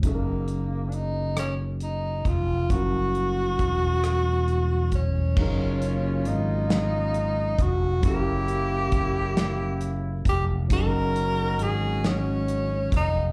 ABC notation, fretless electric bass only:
X:1
M:6/8
L:1/8
Q:3/8=45
K:F#
V:1 name="Fretless electric bass" clef=bass
F,,,4- F,,, E,,, | F,,,2 =E,,,4 | F,,,2 G,,,3 E,,, | F,,,4- F,,, E,,, |
F,,,2 G,,,3 E,,, |]